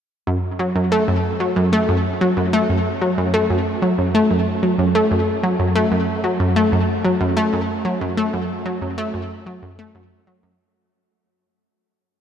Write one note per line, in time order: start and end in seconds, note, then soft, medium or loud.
0.27 0.38 F#2 medium
0.59 0.70 F#3 medium
0.75 0.91 F#2 medium
0.92 1.07 A3 medium
1.08 1.19 F#2 medium
1.40 1.51 F#3 medium
1.56 1.72 F#2 medium
1.73 1.88 A3 medium
1.89 1.99 F#2 medium
2.21 2.31 F#3 medium
2.37 2.52 F#2 medium
2.53 2.69 A3 loud
2.69 2.80 F#2 medium
3.01 3.12 F#3 medium
3.18 3.33 F#2 medium
3.34 3.49 A3 loud
3.50 3.60 F#2 medium
3.82 3.93 F#3 medium
3.98 4.14 F#2 medium
4.15 4.30 A3 loud
4.30 4.41 F#2 medium
4.63 4.73 F#3 medium
4.79 4.94 F#2 medium
4.95 5.10 A3 loud
5.11 5.22 F#2 medium
5.43 5.54 F#3 medium
5.59 5.75 F#2 medium
5.75 5.91 A3 loud
5.92 6.02 F#2 medium
6.24 6.34 F#3 medium
6.40 6.55 F#2 medium
6.56 6.72 A3 medium
6.72 6.83 F#2 medium
7.05 7.15 F#3 medium
7.21 7.36 F#2 medium
7.37 7.52 A3 loud
7.53 7.63 F#2 medium
7.85 7.96 F#3 medium
8.01 8.17 F#2 medium
8.17 8.33 A3 loud
8.33 8.44 F#2 medium
8.66 8.76 F#3 medium
8.82 8.97 F#2 medium
8.98 9.13 A3 loud
9.14 9.25 F#2 medium
9.46 9.57 F#3 medium
9.62 9.78 F#2 medium
9.79 9.94 A3 medium
9.95 10.05 F#2 medium
10.27 10.38 F#3 medium
10.43 10.59 F#2 medium